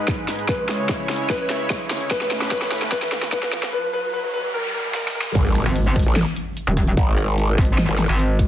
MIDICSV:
0, 0, Header, 1, 9, 480
1, 0, Start_track
1, 0, Tempo, 405405
1, 575, Time_signature, 4, 2, 24, 8
1, 10037, End_track
2, 0, Start_track
2, 0, Title_t, "Grand piano"
2, 0, Program_c, 0, 0
2, 0, Note_on_c, 0, 71, 94
2, 482, Note_off_c, 0, 71, 0
2, 575, Note_on_c, 0, 71, 90
2, 1442, Note_off_c, 0, 71, 0
2, 1536, Note_on_c, 0, 71, 96
2, 2403, Note_off_c, 0, 71, 0
2, 2496, Note_on_c, 0, 71, 92
2, 2957, Note_off_c, 0, 71, 0
2, 2976, Note_on_c, 0, 71, 96
2, 3437, Note_off_c, 0, 71, 0
2, 3456, Note_on_c, 0, 71, 103
2, 3917, Note_off_c, 0, 71, 0
2, 3936, Note_on_c, 0, 71, 99
2, 4397, Note_off_c, 0, 71, 0
2, 4416, Note_on_c, 0, 71, 96
2, 4637, Note_off_c, 0, 71, 0
2, 4656, Note_on_c, 0, 71, 105
2, 4877, Note_off_c, 0, 71, 0
2, 4896, Note_on_c, 0, 71, 100
2, 5117, Note_off_c, 0, 71, 0
2, 5135, Note_on_c, 0, 71, 102
2, 5357, Note_off_c, 0, 71, 0
2, 5375, Note_on_c, 0, 70, 108
2, 5597, Note_off_c, 0, 70, 0
2, 5615, Note_on_c, 0, 70, 99
2, 5837, Note_off_c, 0, 70, 0
2, 5855, Note_on_c, 0, 70, 101
2, 6077, Note_off_c, 0, 70, 0
2, 6095, Note_on_c, 0, 70, 105
2, 6317, Note_off_c, 0, 70, 0
2, 10037, End_track
3, 0, Start_track
3, 0, Title_t, "Supersaw synth"
3, 0, Program_c, 1, 81
3, 0, Note_on_c, 1, 44, 81
3, 0, Note_on_c, 1, 56, 74
3, 0, Note_on_c, 1, 63, 74
3, 0, Note_on_c, 1, 71, 91
3, 528, Note_off_c, 1, 71, 0
3, 537, Note_off_c, 1, 63, 0
3, 556, Note_off_c, 1, 44, 0
3, 575, Note_on_c, 1, 64, 77
3, 575, Note_on_c, 1, 73, 90
3, 576, Note_on_c, 1, 49, 82
3, 2448, Note_off_c, 1, 56, 0
3, 2476, Note_off_c, 1, 49, 0
3, 2476, Note_off_c, 1, 64, 0
3, 2476, Note_off_c, 1, 73, 0
3, 2496, Note_on_c, 1, 45, 83
3, 2496, Note_on_c, 1, 57, 76
3, 2496, Note_on_c, 1, 61, 73
3, 2496, Note_on_c, 1, 71, 91
3, 4396, Note_off_c, 1, 71, 0
3, 4397, Note_off_c, 1, 45, 0
3, 4397, Note_off_c, 1, 57, 0
3, 4397, Note_off_c, 1, 61, 0
3, 10037, End_track
4, 0, Start_track
4, 0, Title_t, "Wobble bass"
4, 0, Program_c, 2, 39
4, 6336, Note_on_c, 2, 32, 99
4, 6680, Note_off_c, 2, 32, 0
4, 7179, Note_on_c, 2, 33, 100
4, 7400, Note_off_c, 2, 33, 0
4, 8256, Note_on_c, 2, 32, 97
4, 8957, Note_off_c, 2, 32, 0
4, 9340, Note_on_c, 2, 32, 98
4, 9560, Note_off_c, 2, 32, 0
4, 10037, End_track
5, 0, Start_track
5, 0, Title_t, "Wobble bass"
5, 0, Program_c, 3, 39
5, 6700, Note_on_c, 3, 32, 98
5, 7160, Note_off_c, 3, 32, 0
5, 7899, Note_on_c, 3, 27, 97
5, 8237, Note_off_c, 3, 27, 0
5, 8976, Note_on_c, 3, 32, 98
5, 9320, Note_off_c, 3, 32, 0
5, 9580, Note_on_c, 3, 32, 100
5, 10037, Note_off_c, 3, 32, 0
5, 10037, End_track
6, 0, Start_track
6, 0, Title_t, "Impact"
6, 0, Program_c, 4, 103
6, 6335, Note_on_c, 4, 60, 78
6, 8255, Note_off_c, 4, 60, 0
6, 10037, End_track
7, 0, Start_track
7, 0, Title_t, "Noise sweep"
7, 0, Program_c, 5, 103
7, 4415, Note_on_c, 5, 60, 79
7, 6335, Note_off_c, 5, 60, 0
7, 10037, End_track
8, 0, Start_track
8, 0, Title_t, "Riser"
8, 0, Program_c, 6, 103
8, 0, Note_on_c, 6, 60, 77
8, 6335, Note_off_c, 6, 60, 0
8, 10037, End_track
9, 0, Start_track
9, 0, Title_t, "Drums"
9, 95, Note_on_c, 9, 36, 95
9, 95, Note_on_c, 9, 38, 81
9, 95, Note_on_c, 9, 42, 73
9, 214, Note_off_c, 9, 36, 0
9, 214, Note_off_c, 9, 38, 0
9, 214, Note_off_c, 9, 42, 0
9, 335, Note_on_c, 9, 38, 77
9, 335, Note_on_c, 9, 46, 86
9, 454, Note_off_c, 9, 38, 0
9, 454, Note_off_c, 9, 46, 0
9, 460, Note_on_c, 9, 42, 35
9, 575, Note_on_c, 9, 36, 95
9, 576, Note_off_c, 9, 42, 0
9, 576, Note_on_c, 9, 38, 78
9, 576, Note_on_c, 9, 42, 73
9, 694, Note_off_c, 9, 36, 0
9, 694, Note_off_c, 9, 38, 0
9, 694, Note_off_c, 9, 42, 0
9, 816, Note_on_c, 9, 38, 82
9, 816, Note_on_c, 9, 42, 48
9, 934, Note_off_c, 9, 38, 0
9, 934, Note_off_c, 9, 42, 0
9, 1055, Note_on_c, 9, 36, 93
9, 1056, Note_on_c, 9, 38, 80
9, 1056, Note_on_c, 9, 42, 73
9, 1174, Note_off_c, 9, 36, 0
9, 1174, Note_off_c, 9, 38, 0
9, 1174, Note_off_c, 9, 42, 0
9, 1296, Note_on_c, 9, 38, 80
9, 1296, Note_on_c, 9, 42, 45
9, 1337, Note_off_c, 9, 42, 0
9, 1337, Note_on_c, 9, 42, 60
9, 1376, Note_off_c, 9, 42, 0
9, 1376, Note_on_c, 9, 42, 71
9, 1414, Note_off_c, 9, 38, 0
9, 1494, Note_off_c, 9, 42, 0
9, 1535, Note_on_c, 9, 36, 97
9, 1536, Note_on_c, 9, 38, 86
9, 1654, Note_off_c, 9, 36, 0
9, 1654, Note_off_c, 9, 38, 0
9, 1776, Note_on_c, 9, 38, 87
9, 1776, Note_on_c, 9, 42, 50
9, 1894, Note_off_c, 9, 38, 0
9, 1894, Note_off_c, 9, 42, 0
9, 2015, Note_on_c, 9, 36, 96
9, 2016, Note_on_c, 9, 38, 92
9, 2016, Note_on_c, 9, 42, 75
9, 2134, Note_off_c, 9, 36, 0
9, 2134, Note_off_c, 9, 38, 0
9, 2134, Note_off_c, 9, 42, 0
9, 2256, Note_on_c, 9, 38, 86
9, 2256, Note_on_c, 9, 46, 87
9, 2374, Note_off_c, 9, 38, 0
9, 2374, Note_off_c, 9, 46, 0
9, 2380, Note_on_c, 9, 42, 33
9, 2495, Note_on_c, 9, 36, 95
9, 2496, Note_off_c, 9, 42, 0
9, 2496, Note_on_c, 9, 38, 91
9, 2496, Note_on_c, 9, 42, 74
9, 2614, Note_off_c, 9, 36, 0
9, 2614, Note_off_c, 9, 38, 0
9, 2614, Note_off_c, 9, 42, 0
9, 2619, Note_on_c, 9, 38, 78
9, 2736, Note_off_c, 9, 38, 0
9, 2736, Note_on_c, 9, 38, 90
9, 2736, Note_on_c, 9, 42, 51
9, 2854, Note_off_c, 9, 38, 0
9, 2854, Note_off_c, 9, 42, 0
9, 2860, Note_on_c, 9, 38, 81
9, 2976, Note_off_c, 9, 38, 0
9, 2976, Note_on_c, 9, 36, 95
9, 2976, Note_on_c, 9, 38, 90
9, 2976, Note_on_c, 9, 42, 77
9, 3094, Note_off_c, 9, 36, 0
9, 3094, Note_off_c, 9, 38, 0
9, 3094, Note_off_c, 9, 42, 0
9, 3100, Note_on_c, 9, 38, 82
9, 3216, Note_off_c, 9, 38, 0
9, 3216, Note_on_c, 9, 38, 90
9, 3216, Note_on_c, 9, 42, 46
9, 3257, Note_off_c, 9, 42, 0
9, 3257, Note_on_c, 9, 42, 60
9, 3296, Note_off_c, 9, 42, 0
9, 3296, Note_on_c, 9, 42, 76
9, 3335, Note_off_c, 9, 38, 0
9, 3339, Note_on_c, 9, 38, 86
9, 3414, Note_off_c, 9, 42, 0
9, 3455, Note_off_c, 9, 38, 0
9, 3455, Note_on_c, 9, 38, 98
9, 3456, Note_on_c, 9, 36, 102
9, 3574, Note_off_c, 9, 36, 0
9, 3574, Note_off_c, 9, 38, 0
9, 3579, Note_on_c, 9, 38, 87
9, 3696, Note_off_c, 9, 38, 0
9, 3696, Note_on_c, 9, 38, 96
9, 3696, Note_on_c, 9, 42, 53
9, 3814, Note_off_c, 9, 38, 0
9, 3814, Note_off_c, 9, 42, 0
9, 3819, Note_on_c, 9, 38, 84
9, 3935, Note_off_c, 9, 38, 0
9, 3935, Note_on_c, 9, 38, 104
9, 3935, Note_on_c, 9, 42, 81
9, 3936, Note_on_c, 9, 36, 98
9, 4054, Note_off_c, 9, 36, 0
9, 4054, Note_off_c, 9, 38, 0
9, 4054, Note_off_c, 9, 42, 0
9, 4059, Note_on_c, 9, 38, 88
9, 4175, Note_off_c, 9, 38, 0
9, 4175, Note_on_c, 9, 38, 97
9, 4175, Note_on_c, 9, 46, 93
9, 4294, Note_off_c, 9, 38, 0
9, 4294, Note_off_c, 9, 46, 0
9, 4299, Note_on_c, 9, 38, 89
9, 4299, Note_on_c, 9, 42, 36
9, 4418, Note_off_c, 9, 38, 0
9, 4418, Note_off_c, 9, 42, 0
9, 5856, Note_on_c, 9, 38, 70
9, 5974, Note_off_c, 9, 38, 0
9, 6016, Note_on_c, 9, 38, 82
9, 6134, Note_off_c, 9, 38, 0
9, 6176, Note_on_c, 9, 38, 96
9, 6294, Note_off_c, 9, 38, 0
9, 6335, Note_on_c, 9, 42, 79
9, 6335, Note_on_c, 9, 49, 100
9, 6336, Note_on_c, 9, 36, 116
9, 6454, Note_off_c, 9, 36, 0
9, 6454, Note_off_c, 9, 42, 0
9, 6454, Note_off_c, 9, 49, 0
9, 6575, Note_on_c, 9, 26, 72
9, 6575, Note_on_c, 9, 42, 53
9, 6694, Note_off_c, 9, 26, 0
9, 6694, Note_off_c, 9, 42, 0
9, 6815, Note_on_c, 9, 42, 80
9, 6934, Note_off_c, 9, 42, 0
9, 7056, Note_on_c, 9, 26, 50
9, 7056, Note_on_c, 9, 36, 102
9, 7056, Note_on_c, 9, 42, 49
9, 7097, Note_off_c, 9, 42, 0
9, 7097, Note_on_c, 9, 42, 65
9, 7136, Note_off_c, 9, 42, 0
9, 7136, Note_on_c, 9, 42, 81
9, 7174, Note_off_c, 9, 26, 0
9, 7174, Note_off_c, 9, 36, 0
9, 7254, Note_off_c, 9, 42, 0
9, 7295, Note_on_c, 9, 38, 121
9, 7414, Note_off_c, 9, 38, 0
9, 7535, Note_on_c, 9, 42, 54
9, 7654, Note_off_c, 9, 42, 0
9, 7776, Note_on_c, 9, 42, 83
9, 7894, Note_off_c, 9, 42, 0
9, 8015, Note_on_c, 9, 26, 57
9, 8015, Note_on_c, 9, 46, 98
9, 8016, Note_on_c, 9, 36, 61
9, 8134, Note_off_c, 9, 26, 0
9, 8134, Note_off_c, 9, 36, 0
9, 8134, Note_off_c, 9, 46, 0
9, 8139, Note_on_c, 9, 42, 38
9, 8255, Note_off_c, 9, 42, 0
9, 8255, Note_on_c, 9, 42, 82
9, 8256, Note_on_c, 9, 36, 124
9, 8374, Note_off_c, 9, 36, 0
9, 8374, Note_off_c, 9, 42, 0
9, 8496, Note_on_c, 9, 26, 72
9, 8496, Note_on_c, 9, 42, 54
9, 8614, Note_off_c, 9, 26, 0
9, 8614, Note_off_c, 9, 42, 0
9, 8736, Note_on_c, 9, 42, 80
9, 8854, Note_off_c, 9, 42, 0
9, 8976, Note_on_c, 9, 26, 50
9, 8976, Note_on_c, 9, 36, 109
9, 8976, Note_on_c, 9, 42, 50
9, 9017, Note_off_c, 9, 42, 0
9, 9017, Note_on_c, 9, 42, 65
9, 9056, Note_off_c, 9, 42, 0
9, 9056, Note_on_c, 9, 42, 84
9, 9094, Note_off_c, 9, 26, 0
9, 9094, Note_off_c, 9, 36, 0
9, 9174, Note_off_c, 9, 42, 0
9, 9216, Note_on_c, 9, 38, 124
9, 9334, Note_off_c, 9, 38, 0
9, 9339, Note_on_c, 9, 26, 76
9, 9456, Note_on_c, 9, 38, 63
9, 9456, Note_on_c, 9, 42, 53
9, 9458, Note_off_c, 9, 26, 0
9, 9574, Note_off_c, 9, 38, 0
9, 9574, Note_off_c, 9, 42, 0
9, 9696, Note_on_c, 9, 42, 85
9, 9814, Note_off_c, 9, 42, 0
9, 9936, Note_on_c, 9, 36, 62
9, 9936, Note_on_c, 9, 46, 93
9, 10037, Note_off_c, 9, 36, 0
9, 10037, Note_off_c, 9, 46, 0
9, 10037, End_track
0, 0, End_of_file